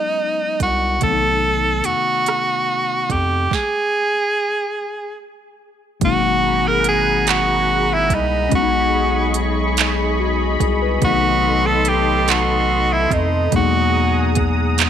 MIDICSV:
0, 0, Header, 1, 6, 480
1, 0, Start_track
1, 0, Tempo, 833333
1, 588, Time_signature, 6, 3, 24, 8
1, 8581, End_track
2, 0, Start_track
2, 0, Title_t, "Analog synth pad"
2, 0, Program_c, 0, 89
2, 3467, Note_on_c, 0, 82, 67
2, 3468, Note_on_c, 0, 68, 79
2, 3468, Note_on_c, 0, 78, 70
2, 3470, Note_on_c, 0, 83, 89
2, 4893, Note_off_c, 0, 82, 0
2, 4894, Note_off_c, 0, 68, 0
2, 4894, Note_off_c, 0, 78, 0
2, 4914, Note_on_c, 0, 68, 74
2, 4916, Note_on_c, 0, 85, 87
2, 4919, Note_on_c, 0, 75, 71
2, 6337, Note_off_c, 0, 68, 0
2, 6338, Note_off_c, 0, 85, 0
2, 6349, Note_on_c, 0, 69, 84
2, 6351, Note_on_c, 0, 84, 86
2, 7766, Note_off_c, 0, 83, 0
2, 7771, Note_off_c, 0, 75, 0
2, 7774, Note_off_c, 0, 69, 0
2, 7775, Note_off_c, 0, 84, 0
2, 7778, Note_on_c, 0, 78, 69
2, 7780, Note_on_c, 0, 87, 87
2, 7781, Note_on_c, 0, 68, 78
2, 7783, Note_on_c, 0, 82, 68
2, 8581, Note_off_c, 0, 68, 0
2, 8581, Note_off_c, 0, 78, 0
2, 8581, Note_off_c, 0, 82, 0
2, 8581, Note_off_c, 0, 87, 0
2, 8581, End_track
3, 0, Start_track
3, 0, Title_t, "Tenor saxophone"
3, 0, Program_c, 1, 66
3, 0, Note_on_c, 1, 63, 91
3, 332, Note_off_c, 1, 63, 0
3, 359, Note_on_c, 1, 66, 88
3, 577, Note_off_c, 1, 66, 0
3, 595, Note_on_c, 1, 69, 111
3, 1065, Note_on_c, 1, 66, 99
3, 1074, Note_off_c, 1, 69, 0
3, 1794, Note_on_c, 1, 67, 87
3, 1803, Note_off_c, 1, 66, 0
3, 2041, Note_on_c, 1, 68, 94
3, 2050, Note_off_c, 1, 67, 0
3, 2995, Note_off_c, 1, 68, 0
3, 3483, Note_on_c, 1, 66, 101
3, 3844, Note_on_c, 1, 70, 102
3, 3853, Note_off_c, 1, 66, 0
3, 3956, Note_off_c, 1, 70, 0
3, 3966, Note_on_c, 1, 68, 96
3, 4197, Note_on_c, 1, 66, 97
3, 4206, Note_off_c, 1, 68, 0
3, 4571, Note_on_c, 1, 64, 85
3, 4579, Note_off_c, 1, 66, 0
3, 4690, Note_on_c, 1, 63, 81
3, 4698, Note_off_c, 1, 64, 0
3, 4919, Note_off_c, 1, 63, 0
3, 4926, Note_on_c, 1, 66, 97
3, 5434, Note_off_c, 1, 66, 0
3, 6362, Note_on_c, 1, 66, 108
3, 6717, Note_on_c, 1, 69, 102
3, 6726, Note_off_c, 1, 66, 0
3, 6845, Note_on_c, 1, 67, 92
3, 6854, Note_off_c, 1, 69, 0
3, 7085, Note_on_c, 1, 66, 96
3, 7094, Note_off_c, 1, 67, 0
3, 7447, Note_on_c, 1, 64, 86
3, 7456, Note_off_c, 1, 66, 0
3, 7562, Note_on_c, 1, 63, 82
3, 7570, Note_off_c, 1, 64, 0
3, 7795, Note_off_c, 1, 63, 0
3, 7809, Note_on_c, 1, 66, 98
3, 8316, Note_off_c, 1, 66, 0
3, 8581, End_track
4, 0, Start_track
4, 0, Title_t, "Tine electric piano"
4, 0, Program_c, 2, 4
4, 0, Control_c, 2, 64, 127
4, 0, Note_on_c, 2, 54, 54
4, 0, Note_on_c, 2, 56, 50
4, 0, Note_on_c, 2, 59, 51
4, 0, Note_on_c, 2, 61, 53
4, 0, Note_on_c, 2, 63, 65
4, 558, Note_off_c, 2, 61, 0
4, 563, Note_off_c, 2, 54, 0
4, 568, Note_off_c, 2, 56, 0
4, 572, Note_on_c, 2, 48, 54
4, 573, Note_off_c, 2, 59, 0
4, 578, Note_off_c, 2, 63, 0
4, 584, Note_on_c, 2, 51, 52
4, 592, Note_on_c, 2, 57, 53
4, 597, Control_c, 2, 64, 0
4, 600, Note_on_c, 2, 59, 55
4, 611, Note_on_c, 2, 60, 53
4, 637, Note_off_c, 2, 60, 0
4, 650, Note_on_c, 2, 63, 59
4, 708, Control_c, 2, 64, 127
4, 1997, Note_off_c, 2, 48, 0
4, 2003, Note_off_c, 2, 51, 0
4, 2007, Note_off_c, 2, 57, 0
4, 2011, Note_off_c, 2, 59, 0
4, 2034, Control_c, 2, 64, 0
4, 2036, Note_off_c, 2, 63, 0
4, 3456, Note_on_c, 2, 46, 48
4, 3462, Note_on_c, 2, 54, 56
4, 3475, Note_on_c, 2, 56, 58
4, 3483, Note_on_c, 2, 58, 56
4, 3492, Note_on_c, 2, 47, 64
4, 3493, Note_on_c, 2, 63, 71
4, 3500, Note_off_c, 2, 46, 0
4, 3583, Control_c, 2, 64, 127
4, 4882, Note_off_c, 2, 54, 0
4, 4888, Note_off_c, 2, 56, 0
4, 4891, Note_on_c, 2, 61, 63
4, 4893, Note_off_c, 2, 58, 0
4, 4897, Note_off_c, 2, 47, 0
4, 4898, Note_off_c, 2, 63, 0
4, 4900, Note_on_c, 2, 54, 59
4, 4907, Note_on_c, 2, 56, 57
4, 4915, Control_c, 2, 64, 0
4, 4920, Note_off_c, 2, 61, 0
4, 4920, Note_on_c, 2, 59, 57
4, 4927, Note_on_c, 2, 61, 54
4, 4955, Note_off_c, 2, 61, 0
4, 4966, Note_on_c, 2, 63, 72
4, 5025, Control_c, 2, 64, 127
4, 5875, Note_on_c, 2, 66, 63
4, 6100, Note_off_c, 2, 66, 0
4, 6110, Note_on_c, 2, 68, 69
4, 6223, Note_off_c, 2, 68, 0
4, 6234, Note_on_c, 2, 71, 63
4, 6321, Note_off_c, 2, 54, 0
4, 6325, Note_off_c, 2, 56, 0
4, 6331, Note_off_c, 2, 59, 0
4, 6338, Note_on_c, 2, 48, 65
4, 6348, Note_on_c, 2, 51, 59
4, 6354, Note_off_c, 2, 63, 0
4, 6356, Control_c, 2, 64, 0
4, 6359, Note_on_c, 2, 57, 64
4, 6366, Note_on_c, 2, 59, 63
4, 6374, Note_on_c, 2, 63, 75
4, 6457, Control_c, 2, 64, 127
4, 6459, Note_off_c, 2, 71, 0
4, 7760, Note_off_c, 2, 48, 0
4, 7765, Note_off_c, 2, 51, 0
4, 7770, Note_off_c, 2, 57, 0
4, 7774, Note_off_c, 2, 59, 0
4, 7778, Note_off_c, 2, 63, 0
4, 7780, Note_on_c, 2, 47, 68
4, 7788, Note_on_c, 2, 54, 62
4, 7796, Control_c, 2, 64, 0
4, 7798, Note_on_c, 2, 56, 61
4, 7805, Note_on_c, 2, 58, 60
4, 7815, Note_on_c, 2, 63, 71
4, 7910, Control_c, 2, 64, 127
4, 8508, Note_off_c, 2, 63, 0
4, 8581, Note_off_c, 2, 47, 0
4, 8581, Note_off_c, 2, 54, 0
4, 8581, Note_off_c, 2, 56, 0
4, 8581, Note_off_c, 2, 58, 0
4, 8581, End_track
5, 0, Start_track
5, 0, Title_t, "Analog synth bass"
5, 0, Program_c, 3, 38
5, 352, Note_on_c, 3, 36, 93
5, 567, Note_off_c, 3, 36, 0
5, 592, Note_on_c, 3, 35, 98
5, 1047, Note_off_c, 3, 35, 0
5, 1074, Note_on_c, 3, 41, 44
5, 1121, Note_off_c, 3, 41, 0
5, 1787, Note_on_c, 3, 41, 89
5, 2004, Note_off_c, 3, 41, 0
5, 3470, Note_on_c, 3, 32, 101
5, 4672, Note_on_c, 3, 36, 97
5, 4681, Note_off_c, 3, 32, 0
5, 4887, Note_off_c, 3, 36, 0
5, 4912, Note_on_c, 3, 35, 105
5, 6087, Note_off_c, 3, 35, 0
5, 6111, Note_on_c, 3, 36, 102
5, 6327, Note_off_c, 3, 36, 0
5, 6352, Note_on_c, 3, 35, 104
5, 7527, Note_off_c, 3, 35, 0
5, 7553, Note_on_c, 3, 41, 86
5, 7768, Note_off_c, 3, 41, 0
5, 7795, Note_on_c, 3, 40, 109
5, 8581, Note_off_c, 3, 40, 0
5, 8581, End_track
6, 0, Start_track
6, 0, Title_t, "Drums"
6, 345, Note_on_c, 9, 42, 61
6, 346, Note_on_c, 9, 36, 78
6, 403, Note_off_c, 9, 42, 0
6, 404, Note_off_c, 9, 36, 0
6, 581, Note_on_c, 9, 42, 55
6, 587, Note_on_c, 9, 36, 99
6, 638, Note_off_c, 9, 42, 0
6, 645, Note_off_c, 9, 36, 0
6, 1059, Note_on_c, 9, 42, 66
6, 1116, Note_off_c, 9, 42, 0
6, 1303, Note_on_c, 9, 42, 60
6, 1316, Note_on_c, 9, 37, 96
6, 1361, Note_off_c, 9, 42, 0
6, 1374, Note_off_c, 9, 37, 0
6, 1784, Note_on_c, 9, 36, 81
6, 1784, Note_on_c, 9, 42, 57
6, 1841, Note_off_c, 9, 36, 0
6, 1842, Note_off_c, 9, 42, 0
6, 2024, Note_on_c, 9, 36, 97
6, 2034, Note_on_c, 9, 38, 74
6, 2081, Note_off_c, 9, 36, 0
6, 2092, Note_off_c, 9, 38, 0
6, 3463, Note_on_c, 9, 42, 63
6, 3465, Note_on_c, 9, 36, 115
6, 3521, Note_off_c, 9, 42, 0
6, 3523, Note_off_c, 9, 36, 0
6, 3942, Note_on_c, 9, 42, 80
6, 3999, Note_off_c, 9, 42, 0
6, 4187, Note_on_c, 9, 42, 71
6, 4199, Note_on_c, 9, 39, 107
6, 4244, Note_off_c, 9, 42, 0
6, 4257, Note_off_c, 9, 39, 0
6, 4665, Note_on_c, 9, 36, 90
6, 4667, Note_on_c, 9, 42, 66
6, 4723, Note_off_c, 9, 36, 0
6, 4725, Note_off_c, 9, 42, 0
6, 4905, Note_on_c, 9, 42, 62
6, 4907, Note_on_c, 9, 36, 115
6, 4962, Note_off_c, 9, 42, 0
6, 4965, Note_off_c, 9, 36, 0
6, 5381, Note_on_c, 9, 42, 80
6, 5438, Note_off_c, 9, 42, 0
6, 5628, Note_on_c, 9, 42, 70
6, 5640, Note_on_c, 9, 39, 106
6, 5685, Note_off_c, 9, 42, 0
6, 5698, Note_off_c, 9, 39, 0
6, 6107, Note_on_c, 9, 36, 83
6, 6109, Note_on_c, 9, 42, 69
6, 6165, Note_off_c, 9, 36, 0
6, 6166, Note_off_c, 9, 42, 0
6, 6346, Note_on_c, 9, 42, 61
6, 6348, Note_on_c, 9, 36, 115
6, 6403, Note_off_c, 9, 42, 0
6, 6406, Note_off_c, 9, 36, 0
6, 6825, Note_on_c, 9, 42, 79
6, 6883, Note_off_c, 9, 42, 0
6, 7072, Note_on_c, 9, 42, 74
6, 7085, Note_on_c, 9, 39, 106
6, 7130, Note_off_c, 9, 42, 0
6, 7142, Note_off_c, 9, 39, 0
6, 7549, Note_on_c, 9, 36, 89
6, 7554, Note_on_c, 9, 42, 62
6, 7607, Note_off_c, 9, 36, 0
6, 7611, Note_off_c, 9, 42, 0
6, 7788, Note_on_c, 9, 42, 66
6, 7790, Note_on_c, 9, 36, 112
6, 7846, Note_off_c, 9, 42, 0
6, 7848, Note_off_c, 9, 36, 0
6, 8268, Note_on_c, 9, 42, 76
6, 8276, Note_on_c, 9, 36, 97
6, 8325, Note_off_c, 9, 42, 0
6, 8333, Note_off_c, 9, 36, 0
6, 8513, Note_on_c, 9, 42, 73
6, 8525, Note_on_c, 9, 39, 109
6, 8570, Note_off_c, 9, 42, 0
6, 8581, Note_off_c, 9, 39, 0
6, 8581, End_track
0, 0, End_of_file